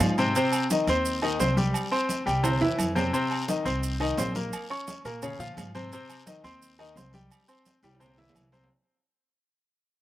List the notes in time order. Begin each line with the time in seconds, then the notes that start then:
Already playing: F3 F4 F5
0.00 G#2, high conga, low timbale, low agogo, short guiro, maracas
0.18 C3 C4 C5, low agogo, short guiro, maracas
0.35 C3 C4 C5, high conga, low agogo, long guiro, maracas
0.52 high conga, low agogo, maracas
0.70 D#3 D#4 D#5, high conga, low timbale, short guiro, maracas
0.87 D#2 C4 C5 C6, high conga, low agogo, short guiro, maracas
1.05 high conga, long guiro, maracas
1.22 D#3 D#4 D#5, high conga, low agogo
1.39 C2 C4 C5 C6, high conga, low timbale, short guiro, maracas
1.57 G3 G4 G5, high conga, short guiro, maracas
1.74 high conga, low agogo, long guiro, maracas
1.91 C4 C5 C6, high conga, low agogo
2.09 high conga, low timbale, short guiro, maracas
2.26 C2 G3 G4 G5, high conga, low agogo, short guiro, maracas
2.43 C3 C4 C5, high conga, low conga, high timbale, low agogo, long guiro, maracas
2.61 E2 E3 E4 E5, high conga, low conga, high timbale
2.78 F2, high conga, low agogo, short guiro, maracas
2.95 C3 C4 C5, high conga, low timbale, low agogo, short guiro, maracas
3.13 C3 C4 C5, low agogo, long guiro, maracas
3.31 high conga, low agogo
3.48 D#3 D#4 D#5, high conga, low timbale, short guiro, maracas
3.65 C2 C4 C5 C6, high conga, low agogo, short guiro, maracas
3.83 high conga, long guiro, maracas
4.00 D#3 D#4 D#5, high conga, low agogo
4.17 A#1 C4 C5 C6, high conga, low timbale, short guiro, maracas
4.35 A#3 A#4 A#5, high conga, short guiro, maracas
4.53 high conga, low agogo, long guiro, maracas
4.70 C#4 C#5 C#6, high conga, low agogo
4.87 high conga, low timbale, short guiro, maracas
5.05 A#2 A#3 A#4 A#5, high conga, low agogo, short guiro, maracas
5.22 C#3 C#4 C#5, high conga, low conga, low agogo, long guiro, maracas
5.39 A#2 F3 F4 F5, high conga, low conga, maracas
5.57 G#2, high conga, low timbale, low agogo, short guiro, maracas
5.75 C3 C4 C5, high conga, low agogo, short guiro, maracas
5.92 C3 C4 C5, low agogo, long guiro, maracas
6.09 high conga, low agogo, maracas
6.26 D#3 D#4 D#5, high conga, low timbale, short guiro, maracas
6.44 D#2 C4 C5 C6, high conga, low agogo, short guiro, maracas
6.62 high conga, long guiro, maracas
6.79 D#3 D#4 D#5, high conga, low agogo
6.96 C2 C4 C5 C6, high conga, low timbale, short guiro, maracas
7.13 G3 G4 G5, high conga, short guiro, maracas
7.30 high conga, low agogo, long guiro, maracas
7.48 C4 C5 C6, high conga, low agogo, maracas
7.65 high conga, low timbale, short guiro, maracas
7.83 C2 G3 G4 G5, high conga, high timbale, low agogo, short guiro, maracas
7.95 high timbale
8.00 C3 C4 C5, high conga, low conga, low agogo, long guiro, maracas
8.06 low timbale
8.18 E3 E4 E5, high conga, low conga, low timbale
8.29 low timbale
8.35 C2, high conga, low agogo, short guiro, maracas
8.41 low timbale
8.52 C3 C4 C5, high conga, low timbale, low agogo, short guiro, maracas
8.64 low timbale